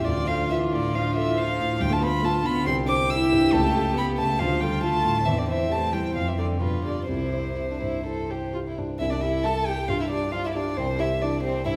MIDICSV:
0, 0, Header, 1, 5, 480
1, 0, Start_track
1, 0, Key_signature, 0, "major"
1, 0, Tempo, 434153
1, 82, Time_signature, 4, 2, 24, 8
1, 6803, Tempo, 472813
1, 9683, Tempo, 445434
1, 12669, End_track
2, 0, Start_track
2, 0, Title_t, "Violin"
2, 0, Program_c, 0, 40
2, 51, Note_on_c, 0, 74, 76
2, 300, Note_on_c, 0, 77, 72
2, 316, Note_off_c, 0, 74, 0
2, 549, Note_off_c, 0, 77, 0
2, 556, Note_on_c, 0, 76, 68
2, 644, Note_off_c, 0, 76, 0
2, 807, Note_on_c, 0, 74, 63
2, 1051, Note_on_c, 0, 77, 67
2, 1068, Note_off_c, 0, 74, 0
2, 1276, Note_off_c, 0, 77, 0
2, 1282, Note_on_c, 0, 76, 76
2, 1524, Note_on_c, 0, 77, 80
2, 1541, Note_off_c, 0, 76, 0
2, 1996, Note_on_c, 0, 79, 86
2, 2013, Note_off_c, 0, 77, 0
2, 2129, Note_on_c, 0, 81, 60
2, 2145, Note_off_c, 0, 79, 0
2, 2238, Note_on_c, 0, 83, 83
2, 2255, Note_off_c, 0, 81, 0
2, 2479, Note_on_c, 0, 81, 74
2, 2495, Note_off_c, 0, 83, 0
2, 2716, Note_on_c, 0, 83, 80
2, 2732, Note_off_c, 0, 81, 0
2, 2942, Note_off_c, 0, 83, 0
2, 2948, Note_on_c, 0, 84, 76
2, 3037, Note_off_c, 0, 84, 0
2, 3180, Note_on_c, 0, 86, 88
2, 3427, Note_on_c, 0, 88, 81
2, 3444, Note_off_c, 0, 86, 0
2, 3899, Note_on_c, 0, 81, 88
2, 3915, Note_off_c, 0, 88, 0
2, 4388, Note_off_c, 0, 81, 0
2, 4398, Note_on_c, 0, 83, 76
2, 4487, Note_off_c, 0, 83, 0
2, 4620, Note_on_c, 0, 81, 79
2, 4855, Note_on_c, 0, 77, 72
2, 4872, Note_off_c, 0, 81, 0
2, 5091, Note_on_c, 0, 79, 77
2, 5107, Note_off_c, 0, 77, 0
2, 5340, Note_off_c, 0, 79, 0
2, 5347, Note_on_c, 0, 81, 83
2, 5812, Note_on_c, 0, 76, 71
2, 5829, Note_off_c, 0, 81, 0
2, 5951, Note_on_c, 0, 74, 58
2, 5967, Note_off_c, 0, 76, 0
2, 6063, Note_off_c, 0, 74, 0
2, 6070, Note_on_c, 0, 76, 69
2, 6320, Note_on_c, 0, 81, 73
2, 6336, Note_off_c, 0, 76, 0
2, 6555, Note_on_c, 0, 79, 62
2, 6572, Note_off_c, 0, 81, 0
2, 6795, Note_off_c, 0, 79, 0
2, 6802, Note_on_c, 0, 77, 60
2, 6927, Note_on_c, 0, 76, 49
2, 6942, Note_off_c, 0, 77, 0
2, 7030, Note_off_c, 0, 76, 0
2, 7037, Note_on_c, 0, 74, 60
2, 7118, Note_off_c, 0, 74, 0
2, 7267, Note_on_c, 0, 71, 52
2, 7501, Note_off_c, 0, 71, 0
2, 7512, Note_on_c, 0, 74, 51
2, 7742, Note_off_c, 0, 74, 0
2, 7749, Note_on_c, 0, 72, 57
2, 9416, Note_off_c, 0, 72, 0
2, 9680, Note_on_c, 0, 76, 71
2, 9800, Note_on_c, 0, 74, 65
2, 9816, Note_off_c, 0, 76, 0
2, 9924, Note_on_c, 0, 76, 68
2, 9940, Note_off_c, 0, 74, 0
2, 10169, Note_on_c, 0, 81, 74
2, 10185, Note_off_c, 0, 76, 0
2, 10405, Note_on_c, 0, 79, 65
2, 10421, Note_off_c, 0, 81, 0
2, 10643, Note_on_c, 0, 77, 70
2, 10659, Note_off_c, 0, 79, 0
2, 10766, Note_off_c, 0, 77, 0
2, 10778, Note_on_c, 0, 76, 57
2, 10876, Note_off_c, 0, 76, 0
2, 10882, Note_on_c, 0, 74, 72
2, 11110, Note_on_c, 0, 77, 71
2, 11126, Note_off_c, 0, 74, 0
2, 11238, Note_off_c, 0, 77, 0
2, 11251, Note_on_c, 0, 76, 66
2, 11298, Note_off_c, 0, 76, 0
2, 11347, Note_on_c, 0, 74, 68
2, 11596, Note_on_c, 0, 72, 81
2, 11612, Note_off_c, 0, 74, 0
2, 11846, Note_on_c, 0, 76, 74
2, 11862, Note_off_c, 0, 72, 0
2, 12079, Note_on_c, 0, 74, 68
2, 12095, Note_off_c, 0, 76, 0
2, 12308, Note_off_c, 0, 74, 0
2, 12314, Note_on_c, 0, 72, 69
2, 12544, Note_off_c, 0, 72, 0
2, 12551, Note_on_c, 0, 76, 72
2, 12637, Note_off_c, 0, 76, 0
2, 12669, End_track
3, 0, Start_track
3, 0, Title_t, "Grand piano"
3, 0, Program_c, 1, 0
3, 0, Control_c, 1, 64, 127
3, 83, Note_on_c, 1, 38, 48
3, 102, Control_c, 1, 64, 0
3, 280, Control_c, 1, 64, 127
3, 320, Note_on_c, 1, 69, 43
3, 565, Note_on_c, 1, 65, 40
3, 707, Note_off_c, 1, 69, 0
3, 808, Note_on_c, 1, 45, 37
3, 950, Note_off_c, 1, 65, 0
3, 1017, Note_off_c, 1, 38, 0
3, 1052, Note_on_c, 1, 62, 43
3, 1192, Note_off_c, 1, 45, 0
3, 1291, Note_on_c, 1, 69, 46
3, 1432, Note_off_c, 1, 62, 0
3, 1536, Note_on_c, 1, 65, 42
3, 1666, Note_off_c, 1, 69, 0
3, 1768, Note_on_c, 1, 45, 40
3, 1905, Note_off_c, 1, 65, 0
3, 1998, Note_off_c, 1, 45, 0
3, 2003, Note_on_c, 1, 38, 57
3, 2012, Control_c, 1, 64, 0
3, 2201, Control_c, 1, 64, 127
3, 2239, Note_on_c, 1, 71, 46
3, 2475, Note_on_c, 1, 65, 48
3, 2617, Note_off_c, 1, 71, 0
3, 2698, Note_on_c, 1, 50, 44
3, 2857, Note_off_c, 1, 65, 0
3, 2927, Note_off_c, 1, 38, 0
3, 2945, Note_off_c, 1, 50, 0
3, 2947, Note_on_c, 1, 36, 55
3, 2970, Control_c, 1, 64, 0
3, 3124, Control_c, 1, 64, 127
3, 3189, Note_on_c, 1, 72, 49
3, 3437, Note_on_c, 1, 67, 42
3, 3576, Note_off_c, 1, 72, 0
3, 3677, Note_on_c, 1, 43, 46
3, 3820, Note_off_c, 1, 67, 0
3, 3885, Note_off_c, 1, 36, 0
3, 3915, Note_on_c, 1, 37, 58
3, 3917, Note_off_c, 1, 43, 0
3, 3937, Control_c, 1, 64, 0
3, 4084, Control_c, 1, 64, 127
3, 4158, Note_on_c, 1, 69, 49
3, 4394, Note_on_c, 1, 67, 45
3, 4540, Note_off_c, 1, 69, 0
3, 4628, Note_on_c, 1, 49, 41
3, 4776, Note_off_c, 1, 67, 0
3, 4843, Note_off_c, 1, 37, 0
3, 4867, Note_on_c, 1, 38, 49
3, 4869, Note_off_c, 1, 49, 0
3, 4893, Control_c, 1, 64, 0
3, 5084, Control_c, 1, 64, 127
3, 5107, Note_on_c, 1, 69, 47
3, 5335, Note_on_c, 1, 65, 39
3, 5494, Note_off_c, 1, 69, 0
3, 5582, Note_on_c, 1, 45, 42
3, 5729, Note_off_c, 1, 65, 0
3, 5802, Note_off_c, 1, 38, 0
3, 5829, Note_off_c, 1, 45, 0
3, 5829, Note_on_c, 1, 40, 54
3, 5856, Control_c, 1, 64, 0
3, 6040, Control_c, 1, 64, 127
3, 6053, Note_on_c, 1, 72, 45
3, 6298, Note_on_c, 1, 67, 38
3, 6450, Note_off_c, 1, 72, 0
3, 6548, Note_on_c, 1, 52, 36
3, 6697, Note_off_c, 1, 67, 0
3, 6773, Note_off_c, 1, 40, 0
3, 6800, Note_off_c, 1, 52, 0
3, 6800, Note_on_c, 1, 41, 43
3, 6824, Control_c, 1, 64, 0
3, 7008, Control_c, 1, 64, 127
3, 7029, Note_on_c, 1, 69, 34
3, 7034, Note_on_c, 1, 74, 38
3, 7242, Note_off_c, 1, 69, 0
3, 7245, Note_off_c, 1, 74, 0
3, 7253, Note_off_c, 1, 41, 0
3, 7281, Note_on_c, 1, 43, 36
3, 7291, Control_c, 1, 64, 0
3, 7484, Control_c, 1, 64, 127
3, 7507, Note_on_c, 1, 67, 27
3, 7515, Note_on_c, 1, 74, 31
3, 7726, Note_off_c, 1, 67, 0
3, 7730, Note_off_c, 1, 74, 0
3, 7742, Note_off_c, 1, 43, 0
3, 7749, Note_on_c, 1, 36, 39
3, 7770, Control_c, 1, 64, 0
3, 7921, Control_c, 1, 64, 127
3, 8000, Note_on_c, 1, 72, 36
3, 8233, Note_on_c, 1, 67, 29
3, 8392, Note_off_c, 1, 72, 0
3, 8489, Note_on_c, 1, 43, 28
3, 8630, Note_off_c, 1, 67, 0
3, 8702, Note_off_c, 1, 36, 0
3, 8730, Note_on_c, 1, 64, 29
3, 8877, Note_off_c, 1, 43, 0
3, 8988, Note_on_c, 1, 72, 29
3, 9115, Note_off_c, 1, 64, 0
3, 9232, Note_on_c, 1, 67, 31
3, 9363, Note_off_c, 1, 72, 0
3, 9471, Note_on_c, 1, 43, 29
3, 9604, Note_off_c, 1, 67, 0
3, 9696, Note_off_c, 1, 43, 0
3, 9702, Note_on_c, 1, 36, 53
3, 9706, Control_c, 1, 64, 0
3, 9871, Control_c, 1, 64, 127
3, 9928, Note_on_c, 1, 67, 44
3, 10165, Note_on_c, 1, 76, 49
3, 10315, Note_off_c, 1, 67, 0
3, 10400, Note_on_c, 1, 67, 41
3, 10554, Note_off_c, 1, 76, 0
3, 10630, Note_off_c, 1, 36, 0
3, 10642, Note_on_c, 1, 43, 50
3, 10646, Note_off_c, 1, 67, 0
3, 10671, Control_c, 1, 64, 0
3, 10818, Control_c, 1, 64, 127
3, 10883, Note_on_c, 1, 67, 44
3, 11126, Note_on_c, 1, 77, 42
3, 11267, Note_off_c, 1, 67, 0
3, 11362, Note_on_c, 1, 67, 47
3, 11508, Note_off_c, 1, 77, 0
3, 11571, Note_off_c, 1, 43, 0
3, 11602, Note_off_c, 1, 67, 0
3, 11607, Note_on_c, 1, 36, 56
3, 11625, Control_c, 1, 64, 0
3, 11768, Control_c, 1, 64, 127
3, 11835, Note_on_c, 1, 67, 44
3, 12072, Note_on_c, 1, 76, 45
3, 12225, Note_off_c, 1, 67, 0
3, 12305, Note_on_c, 1, 67, 42
3, 12463, Note_off_c, 1, 76, 0
3, 12537, Note_off_c, 1, 36, 0
3, 12552, Note_on_c, 1, 43, 42
3, 12669, Note_off_c, 1, 43, 0
3, 12669, Note_off_c, 1, 67, 0
3, 12669, End_track
4, 0, Start_track
4, 0, Title_t, "Violin"
4, 0, Program_c, 2, 40
4, 85, Note_on_c, 2, 65, 54
4, 1956, Note_off_c, 2, 65, 0
4, 1992, Note_on_c, 2, 65, 54
4, 2953, Note_on_c, 2, 67, 63
4, 2970, Note_off_c, 2, 65, 0
4, 4871, Note_on_c, 2, 65, 55
4, 4888, Note_off_c, 2, 67, 0
4, 5821, Note_off_c, 2, 65, 0
4, 5827, Note_on_c, 2, 60, 50
4, 7265, Note_on_c, 2, 65, 40
4, 7280, Note_off_c, 2, 60, 0
4, 7748, Note_off_c, 2, 65, 0
4, 7762, Note_on_c, 2, 64, 36
4, 8191, Note_off_c, 2, 64, 0
4, 8229, Note_on_c, 2, 64, 43
4, 8281, Note_off_c, 2, 64, 0
4, 8385, Note_on_c, 2, 62, 39
4, 8487, Note_off_c, 2, 62, 0
4, 8493, Note_on_c, 2, 64, 43
4, 8730, Note_off_c, 2, 64, 0
4, 8742, Note_on_c, 2, 69, 50
4, 8984, Note_on_c, 2, 67, 43
4, 8999, Note_off_c, 2, 69, 0
4, 9217, Note_off_c, 2, 67, 0
4, 9228, Note_on_c, 2, 65, 38
4, 9272, Note_off_c, 2, 65, 0
4, 9366, Note_on_c, 2, 64, 41
4, 9473, Note_on_c, 2, 62, 35
4, 9488, Note_off_c, 2, 64, 0
4, 9697, Note_off_c, 2, 62, 0
4, 9708, Note_on_c, 2, 64, 69
4, 9752, Note_off_c, 2, 64, 0
4, 9825, Note_on_c, 2, 62, 53
4, 9870, Note_off_c, 2, 62, 0
4, 9948, Note_on_c, 2, 64, 64
4, 10184, Note_on_c, 2, 69, 71
4, 10200, Note_off_c, 2, 64, 0
4, 10435, Note_on_c, 2, 67, 59
4, 10451, Note_off_c, 2, 69, 0
4, 10664, Note_on_c, 2, 65, 63
4, 10680, Note_off_c, 2, 67, 0
4, 10777, Note_off_c, 2, 65, 0
4, 10785, Note_on_c, 2, 64, 53
4, 10830, Note_off_c, 2, 64, 0
4, 10909, Note_on_c, 2, 62, 58
4, 11126, Note_off_c, 2, 62, 0
4, 11132, Note_on_c, 2, 65, 61
4, 11269, Note_on_c, 2, 64, 54
4, 11285, Note_off_c, 2, 65, 0
4, 11377, Note_on_c, 2, 62, 54
4, 11393, Note_off_c, 2, 64, 0
4, 11609, Note_off_c, 2, 62, 0
4, 11619, Note_on_c, 2, 60, 62
4, 11705, Note_off_c, 2, 60, 0
4, 11840, Note_on_c, 2, 64, 60
4, 11926, Note_off_c, 2, 64, 0
4, 12083, Note_on_c, 2, 62, 57
4, 12315, Note_off_c, 2, 62, 0
4, 12321, Note_on_c, 2, 60, 62
4, 12548, Note_off_c, 2, 60, 0
4, 12554, Note_on_c, 2, 64, 69
4, 12640, Note_off_c, 2, 64, 0
4, 12669, End_track
5, 0, Start_track
5, 0, Title_t, "Cello"
5, 0, Program_c, 3, 42
5, 42, Note_on_c, 3, 50, 61
5, 279, Note_off_c, 3, 50, 0
5, 286, Note_on_c, 3, 53, 55
5, 540, Note_off_c, 3, 53, 0
5, 552, Note_on_c, 3, 52, 56
5, 806, Note_on_c, 3, 50, 62
5, 822, Note_off_c, 3, 52, 0
5, 1035, Note_on_c, 3, 53, 57
5, 1051, Note_off_c, 3, 50, 0
5, 1272, Note_on_c, 3, 52, 62
5, 1288, Note_off_c, 3, 53, 0
5, 1493, Note_on_c, 3, 53, 70
5, 1509, Note_off_c, 3, 52, 0
5, 1958, Note_off_c, 3, 53, 0
5, 1964, Note_on_c, 3, 55, 75
5, 2018, Note_off_c, 3, 55, 0
5, 2094, Note_on_c, 3, 57, 51
5, 2146, Note_off_c, 3, 57, 0
5, 2204, Note_on_c, 3, 59, 63
5, 2293, Note_off_c, 3, 59, 0
5, 2437, Note_on_c, 3, 57, 60
5, 2526, Note_off_c, 3, 57, 0
5, 2677, Note_on_c, 3, 59, 71
5, 2920, Note_on_c, 3, 60, 68
5, 2937, Note_off_c, 3, 59, 0
5, 3149, Note_off_c, 3, 60, 0
5, 3155, Note_on_c, 3, 62, 73
5, 3244, Note_off_c, 3, 62, 0
5, 3411, Note_on_c, 3, 64, 80
5, 3891, Note_on_c, 3, 57, 77
5, 3907, Note_off_c, 3, 64, 0
5, 4362, Note_on_c, 3, 59, 65
5, 4379, Note_off_c, 3, 57, 0
5, 4621, Note_on_c, 3, 57, 67
5, 4637, Note_off_c, 3, 59, 0
5, 4869, Note_on_c, 3, 53, 67
5, 4885, Note_off_c, 3, 57, 0
5, 5089, Note_on_c, 3, 55, 63
5, 5106, Note_off_c, 3, 53, 0
5, 5338, Note_on_c, 3, 57, 61
5, 5354, Note_off_c, 3, 55, 0
5, 5818, Note_off_c, 3, 57, 0
5, 5825, Note_on_c, 3, 52, 64
5, 5875, Note_off_c, 3, 52, 0
5, 5944, Note_on_c, 3, 50, 51
5, 6064, Note_on_c, 3, 52, 53
5, 6080, Note_off_c, 3, 50, 0
5, 6293, Note_off_c, 3, 52, 0
5, 6300, Note_on_c, 3, 57, 58
5, 6543, Note_on_c, 3, 55, 47
5, 6560, Note_off_c, 3, 57, 0
5, 6799, Note_on_c, 3, 53, 50
5, 6814, Note_off_c, 3, 55, 0
5, 6910, Note_off_c, 3, 53, 0
5, 6916, Note_on_c, 3, 52, 49
5, 6963, Note_off_c, 3, 52, 0
5, 7035, Note_on_c, 3, 50, 55
5, 7256, Note_on_c, 3, 47, 51
5, 7271, Note_off_c, 3, 50, 0
5, 7488, Note_off_c, 3, 47, 0
5, 7494, Note_on_c, 3, 50, 40
5, 7739, Note_off_c, 3, 50, 0
5, 7745, Note_on_c, 3, 48, 49
5, 9414, Note_off_c, 3, 48, 0
5, 10161, Note_on_c, 3, 55, 51
5, 10524, Note_off_c, 3, 55, 0
5, 11117, Note_on_c, 3, 53, 55
5, 11476, Note_off_c, 3, 53, 0
5, 12066, Note_on_c, 3, 52, 49
5, 12432, Note_off_c, 3, 52, 0
5, 12669, End_track
0, 0, End_of_file